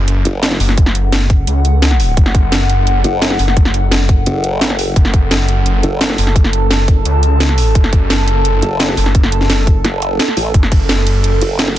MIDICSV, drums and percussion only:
0, 0, Header, 1, 2, 480
1, 0, Start_track
1, 0, Key_signature, 3, "minor"
1, 0, Tempo, 348837
1, 1068, Time_signature, 4, 2, 24, 8
1, 16218, End_track
2, 0, Start_track
2, 0, Title_t, "Drums"
2, 107, Note_on_c, 9, 42, 98
2, 245, Note_off_c, 9, 42, 0
2, 348, Note_on_c, 9, 42, 70
2, 485, Note_off_c, 9, 42, 0
2, 588, Note_on_c, 9, 38, 118
2, 588, Note_on_c, 9, 42, 98
2, 708, Note_off_c, 9, 38, 0
2, 708, Note_on_c, 9, 38, 38
2, 708, Note_on_c, 9, 40, 51
2, 725, Note_off_c, 9, 42, 0
2, 828, Note_on_c, 9, 46, 77
2, 845, Note_off_c, 9, 38, 0
2, 845, Note_off_c, 9, 40, 0
2, 948, Note_on_c, 9, 40, 35
2, 965, Note_off_c, 9, 46, 0
2, 1067, Note_on_c, 9, 36, 127
2, 1067, Note_on_c, 9, 42, 97
2, 1085, Note_off_c, 9, 40, 0
2, 1188, Note_on_c, 9, 40, 53
2, 1205, Note_off_c, 9, 36, 0
2, 1205, Note_off_c, 9, 42, 0
2, 1308, Note_on_c, 9, 42, 71
2, 1325, Note_off_c, 9, 40, 0
2, 1445, Note_off_c, 9, 42, 0
2, 1548, Note_on_c, 9, 38, 127
2, 1548, Note_on_c, 9, 42, 98
2, 1685, Note_off_c, 9, 38, 0
2, 1685, Note_off_c, 9, 42, 0
2, 1788, Note_on_c, 9, 36, 109
2, 1788, Note_on_c, 9, 42, 68
2, 1925, Note_off_c, 9, 36, 0
2, 1925, Note_off_c, 9, 42, 0
2, 2028, Note_on_c, 9, 42, 96
2, 2165, Note_off_c, 9, 42, 0
2, 2268, Note_on_c, 9, 42, 68
2, 2406, Note_off_c, 9, 42, 0
2, 2508, Note_on_c, 9, 38, 125
2, 2508, Note_on_c, 9, 42, 96
2, 2628, Note_on_c, 9, 40, 53
2, 2645, Note_off_c, 9, 38, 0
2, 2645, Note_off_c, 9, 42, 0
2, 2748, Note_on_c, 9, 46, 76
2, 2766, Note_off_c, 9, 40, 0
2, 2886, Note_off_c, 9, 46, 0
2, 2988, Note_on_c, 9, 36, 127
2, 2988, Note_on_c, 9, 42, 92
2, 3108, Note_on_c, 9, 40, 49
2, 3125, Note_off_c, 9, 36, 0
2, 3125, Note_off_c, 9, 42, 0
2, 3228, Note_on_c, 9, 36, 115
2, 3228, Note_on_c, 9, 42, 69
2, 3246, Note_off_c, 9, 40, 0
2, 3365, Note_off_c, 9, 36, 0
2, 3366, Note_off_c, 9, 42, 0
2, 3468, Note_on_c, 9, 38, 127
2, 3468, Note_on_c, 9, 42, 95
2, 3605, Note_off_c, 9, 38, 0
2, 3605, Note_off_c, 9, 42, 0
2, 3708, Note_on_c, 9, 42, 64
2, 3846, Note_off_c, 9, 42, 0
2, 3947, Note_on_c, 9, 42, 91
2, 4085, Note_off_c, 9, 42, 0
2, 4188, Note_on_c, 9, 42, 64
2, 4325, Note_off_c, 9, 42, 0
2, 4427, Note_on_c, 9, 38, 126
2, 4427, Note_on_c, 9, 42, 93
2, 4548, Note_off_c, 9, 38, 0
2, 4548, Note_on_c, 9, 38, 40
2, 4548, Note_on_c, 9, 40, 51
2, 4565, Note_off_c, 9, 42, 0
2, 4668, Note_on_c, 9, 46, 79
2, 4685, Note_off_c, 9, 38, 0
2, 4685, Note_off_c, 9, 40, 0
2, 4788, Note_on_c, 9, 40, 36
2, 4805, Note_off_c, 9, 46, 0
2, 4907, Note_on_c, 9, 36, 127
2, 4908, Note_on_c, 9, 42, 91
2, 4925, Note_off_c, 9, 40, 0
2, 5027, Note_on_c, 9, 40, 50
2, 5045, Note_off_c, 9, 36, 0
2, 5045, Note_off_c, 9, 42, 0
2, 5147, Note_on_c, 9, 42, 66
2, 5165, Note_off_c, 9, 40, 0
2, 5285, Note_off_c, 9, 42, 0
2, 5387, Note_on_c, 9, 38, 127
2, 5387, Note_on_c, 9, 42, 92
2, 5525, Note_off_c, 9, 38, 0
2, 5525, Note_off_c, 9, 42, 0
2, 5627, Note_on_c, 9, 36, 112
2, 5627, Note_on_c, 9, 42, 64
2, 5765, Note_off_c, 9, 36, 0
2, 5765, Note_off_c, 9, 42, 0
2, 5867, Note_on_c, 9, 42, 90
2, 6005, Note_off_c, 9, 42, 0
2, 6107, Note_on_c, 9, 42, 63
2, 6245, Note_off_c, 9, 42, 0
2, 6347, Note_on_c, 9, 38, 123
2, 6347, Note_on_c, 9, 42, 88
2, 6467, Note_on_c, 9, 40, 49
2, 6485, Note_off_c, 9, 38, 0
2, 6485, Note_off_c, 9, 42, 0
2, 6587, Note_on_c, 9, 46, 81
2, 6605, Note_off_c, 9, 40, 0
2, 6725, Note_off_c, 9, 46, 0
2, 6827, Note_on_c, 9, 36, 122
2, 6827, Note_on_c, 9, 42, 92
2, 6947, Note_on_c, 9, 40, 47
2, 6965, Note_off_c, 9, 36, 0
2, 6965, Note_off_c, 9, 42, 0
2, 7067, Note_on_c, 9, 36, 108
2, 7067, Note_on_c, 9, 42, 65
2, 7085, Note_off_c, 9, 40, 0
2, 7205, Note_off_c, 9, 36, 0
2, 7205, Note_off_c, 9, 42, 0
2, 7307, Note_on_c, 9, 38, 126
2, 7307, Note_on_c, 9, 42, 89
2, 7445, Note_off_c, 9, 38, 0
2, 7445, Note_off_c, 9, 42, 0
2, 7547, Note_on_c, 9, 42, 65
2, 7685, Note_off_c, 9, 42, 0
2, 7787, Note_on_c, 9, 42, 88
2, 7925, Note_off_c, 9, 42, 0
2, 8027, Note_on_c, 9, 42, 62
2, 8165, Note_off_c, 9, 42, 0
2, 8267, Note_on_c, 9, 38, 123
2, 8267, Note_on_c, 9, 42, 89
2, 8388, Note_off_c, 9, 38, 0
2, 8388, Note_on_c, 9, 38, 38
2, 8388, Note_on_c, 9, 40, 47
2, 8405, Note_off_c, 9, 42, 0
2, 8508, Note_on_c, 9, 46, 86
2, 8525, Note_off_c, 9, 38, 0
2, 8525, Note_off_c, 9, 40, 0
2, 8628, Note_on_c, 9, 40, 33
2, 8645, Note_off_c, 9, 46, 0
2, 8747, Note_on_c, 9, 36, 117
2, 8748, Note_on_c, 9, 42, 97
2, 8765, Note_off_c, 9, 40, 0
2, 8868, Note_on_c, 9, 40, 46
2, 8885, Note_off_c, 9, 36, 0
2, 8885, Note_off_c, 9, 42, 0
2, 8988, Note_on_c, 9, 42, 68
2, 9005, Note_off_c, 9, 40, 0
2, 9125, Note_off_c, 9, 42, 0
2, 9227, Note_on_c, 9, 38, 119
2, 9227, Note_on_c, 9, 42, 96
2, 9365, Note_off_c, 9, 38, 0
2, 9365, Note_off_c, 9, 42, 0
2, 9467, Note_on_c, 9, 36, 103
2, 9467, Note_on_c, 9, 42, 66
2, 9605, Note_off_c, 9, 36, 0
2, 9605, Note_off_c, 9, 42, 0
2, 9708, Note_on_c, 9, 42, 92
2, 9845, Note_off_c, 9, 42, 0
2, 9948, Note_on_c, 9, 42, 67
2, 10085, Note_off_c, 9, 42, 0
2, 10187, Note_on_c, 9, 38, 117
2, 10187, Note_on_c, 9, 42, 95
2, 10307, Note_on_c, 9, 40, 46
2, 10325, Note_off_c, 9, 38, 0
2, 10325, Note_off_c, 9, 42, 0
2, 10427, Note_on_c, 9, 46, 85
2, 10445, Note_off_c, 9, 40, 0
2, 10565, Note_off_c, 9, 46, 0
2, 10667, Note_on_c, 9, 42, 96
2, 10668, Note_on_c, 9, 36, 117
2, 10787, Note_on_c, 9, 40, 49
2, 10805, Note_off_c, 9, 36, 0
2, 10805, Note_off_c, 9, 42, 0
2, 10907, Note_on_c, 9, 42, 71
2, 10908, Note_on_c, 9, 36, 102
2, 10925, Note_off_c, 9, 40, 0
2, 11045, Note_off_c, 9, 36, 0
2, 11045, Note_off_c, 9, 42, 0
2, 11147, Note_on_c, 9, 38, 119
2, 11147, Note_on_c, 9, 42, 101
2, 11285, Note_off_c, 9, 38, 0
2, 11285, Note_off_c, 9, 42, 0
2, 11387, Note_on_c, 9, 42, 69
2, 11525, Note_off_c, 9, 42, 0
2, 11627, Note_on_c, 9, 42, 98
2, 11765, Note_off_c, 9, 42, 0
2, 11867, Note_on_c, 9, 42, 70
2, 12005, Note_off_c, 9, 42, 0
2, 12107, Note_on_c, 9, 38, 117
2, 12107, Note_on_c, 9, 42, 100
2, 12227, Note_off_c, 9, 38, 0
2, 12227, Note_on_c, 9, 38, 36
2, 12227, Note_on_c, 9, 40, 48
2, 12245, Note_off_c, 9, 42, 0
2, 12347, Note_on_c, 9, 46, 81
2, 12365, Note_off_c, 9, 38, 0
2, 12365, Note_off_c, 9, 40, 0
2, 12467, Note_on_c, 9, 40, 35
2, 12485, Note_off_c, 9, 46, 0
2, 12587, Note_on_c, 9, 42, 99
2, 12588, Note_on_c, 9, 36, 118
2, 12605, Note_off_c, 9, 40, 0
2, 12707, Note_on_c, 9, 40, 50
2, 12725, Note_off_c, 9, 36, 0
2, 12725, Note_off_c, 9, 42, 0
2, 12827, Note_on_c, 9, 42, 73
2, 12845, Note_off_c, 9, 40, 0
2, 12947, Note_on_c, 9, 38, 35
2, 12965, Note_off_c, 9, 42, 0
2, 13067, Note_off_c, 9, 38, 0
2, 13067, Note_on_c, 9, 38, 119
2, 13067, Note_on_c, 9, 42, 103
2, 13205, Note_off_c, 9, 38, 0
2, 13205, Note_off_c, 9, 42, 0
2, 13307, Note_on_c, 9, 36, 100
2, 13308, Note_on_c, 9, 42, 70
2, 13445, Note_off_c, 9, 36, 0
2, 13445, Note_off_c, 9, 42, 0
2, 13547, Note_on_c, 9, 40, 56
2, 13547, Note_on_c, 9, 42, 97
2, 13685, Note_off_c, 9, 40, 0
2, 13685, Note_off_c, 9, 42, 0
2, 13787, Note_on_c, 9, 42, 69
2, 13925, Note_off_c, 9, 42, 0
2, 14028, Note_on_c, 9, 38, 119
2, 14028, Note_on_c, 9, 42, 97
2, 14148, Note_on_c, 9, 40, 49
2, 14165, Note_off_c, 9, 38, 0
2, 14165, Note_off_c, 9, 42, 0
2, 14268, Note_on_c, 9, 46, 79
2, 14285, Note_off_c, 9, 40, 0
2, 14405, Note_off_c, 9, 46, 0
2, 14507, Note_on_c, 9, 36, 122
2, 14507, Note_on_c, 9, 42, 101
2, 14627, Note_on_c, 9, 40, 52
2, 14645, Note_off_c, 9, 36, 0
2, 14645, Note_off_c, 9, 42, 0
2, 14747, Note_on_c, 9, 36, 109
2, 14747, Note_on_c, 9, 42, 74
2, 14747, Note_on_c, 9, 51, 75
2, 14765, Note_off_c, 9, 40, 0
2, 14885, Note_off_c, 9, 36, 0
2, 14885, Note_off_c, 9, 42, 0
2, 14885, Note_off_c, 9, 51, 0
2, 14988, Note_on_c, 9, 38, 124
2, 14988, Note_on_c, 9, 42, 100
2, 15125, Note_off_c, 9, 38, 0
2, 15125, Note_off_c, 9, 42, 0
2, 15227, Note_on_c, 9, 42, 69
2, 15227, Note_on_c, 9, 51, 74
2, 15365, Note_off_c, 9, 42, 0
2, 15365, Note_off_c, 9, 51, 0
2, 15467, Note_on_c, 9, 42, 96
2, 15605, Note_off_c, 9, 42, 0
2, 15707, Note_on_c, 9, 42, 70
2, 15707, Note_on_c, 9, 51, 75
2, 15845, Note_off_c, 9, 42, 0
2, 15845, Note_off_c, 9, 51, 0
2, 15947, Note_on_c, 9, 38, 122
2, 15947, Note_on_c, 9, 42, 98
2, 16067, Note_off_c, 9, 38, 0
2, 16067, Note_on_c, 9, 38, 37
2, 16067, Note_on_c, 9, 40, 51
2, 16085, Note_off_c, 9, 42, 0
2, 16205, Note_off_c, 9, 38, 0
2, 16205, Note_off_c, 9, 40, 0
2, 16218, End_track
0, 0, End_of_file